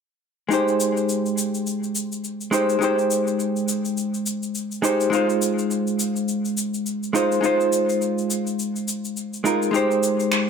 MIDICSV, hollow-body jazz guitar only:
0, 0, Header, 1, 2, 480
1, 0, Start_track
1, 0, Tempo, 576923
1, 423, Time_signature, 4, 2, 24, 8
1, 8735, End_track
2, 0, Start_track
2, 0, Title_t, "Hollow-body jazz guitar"
2, 0, Program_c, 0, 26
2, 404, Note_on_c, 0, 56, 72
2, 417, Note_on_c, 0, 63, 66
2, 432, Note_on_c, 0, 67, 64
2, 445, Note_on_c, 0, 72, 79
2, 2069, Note_off_c, 0, 56, 0
2, 2075, Note_off_c, 0, 63, 0
2, 2083, Note_off_c, 0, 67, 0
2, 2089, Note_off_c, 0, 72, 0
2, 2089, Note_on_c, 0, 56, 74
2, 2097, Note_on_c, 0, 63, 65
2, 2103, Note_on_c, 0, 67, 64
2, 2112, Note_on_c, 0, 72, 79
2, 2309, Note_off_c, 0, 56, 0
2, 2315, Note_off_c, 0, 63, 0
2, 2318, Note_off_c, 0, 67, 0
2, 2319, Note_on_c, 0, 56, 71
2, 2323, Note_off_c, 0, 72, 0
2, 2335, Note_on_c, 0, 63, 68
2, 2347, Note_on_c, 0, 67, 71
2, 2362, Note_on_c, 0, 72, 87
2, 3986, Note_off_c, 0, 56, 0
2, 3994, Note_off_c, 0, 63, 0
2, 4000, Note_off_c, 0, 67, 0
2, 4008, Note_off_c, 0, 72, 0
2, 4011, Note_on_c, 0, 56, 76
2, 4019, Note_on_c, 0, 63, 70
2, 4025, Note_on_c, 0, 67, 69
2, 4033, Note_on_c, 0, 72, 81
2, 4232, Note_off_c, 0, 56, 0
2, 4236, Note_off_c, 0, 63, 0
2, 4239, Note_off_c, 0, 67, 0
2, 4242, Note_on_c, 0, 56, 77
2, 4243, Note_off_c, 0, 72, 0
2, 4257, Note_on_c, 0, 63, 67
2, 4269, Note_on_c, 0, 65, 70
2, 4283, Note_on_c, 0, 72, 81
2, 5908, Note_off_c, 0, 56, 0
2, 5915, Note_off_c, 0, 63, 0
2, 5921, Note_off_c, 0, 65, 0
2, 5928, Note_off_c, 0, 72, 0
2, 5933, Note_on_c, 0, 56, 72
2, 5941, Note_on_c, 0, 63, 65
2, 5947, Note_on_c, 0, 65, 68
2, 5955, Note_on_c, 0, 72, 81
2, 6153, Note_off_c, 0, 56, 0
2, 6157, Note_off_c, 0, 63, 0
2, 6160, Note_off_c, 0, 65, 0
2, 6163, Note_on_c, 0, 56, 72
2, 6164, Note_off_c, 0, 72, 0
2, 6177, Note_on_c, 0, 63, 68
2, 6192, Note_on_c, 0, 65, 69
2, 6204, Note_on_c, 0, 72, 87
2, 7828, Note_off_c, 0, 56, 0
2, 7835, Note_off_c, 0, 63, 0
2, 7843, Note_off_c, 0, 65, 0
2, 7849, Note_off_c, 0, 72, 0
2, 7853, Note_on_c, 0, 56, 63
2, 7860, Note_on_c, 0, 63, 57
2, 7867, Note_on_c, 0, 65, 56
2, 7874, Note_on_c, 0, 70, 67
2, 8069, Note_off_c, 0, 56, 0
2, 8077, Note_off_c, 0, 63, 0
2, 8079, Note_on_c, 0, 56, 72
2, 8080, Note_off_c, 0, 65, 0
2, 8083, Note_off_c, 0, 70, 0
2, 8094, Note_on_c, 0, 63, 72
2, 8107, Note_on_c, 0, 67, 74
2, 8120, Note_on_c, 0, 72, 83
2, 8735, Note_off_c, 0, 56, 0
2, 8735, Note_off_c, 0, 63, 0
2, 8735, Note_off_c, 0, 67, 0
2, 8735, Note_off_c, 0, 72, 0
2, 8735, End_track
0, 0, End_of_file